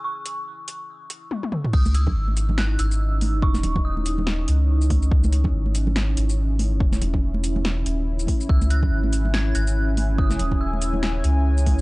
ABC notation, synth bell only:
X:1
M:4/4
L:1/8
Q:"Swing 16ths" 1/4=142
K:C#m
V:1 name="Synth bell"
c'6 z2 | d' e'3 f' e'3 | c'2 d'4 z2 | z8 |
z8 | e' f'3 g' f'3 | d'2 e'4 z2 |]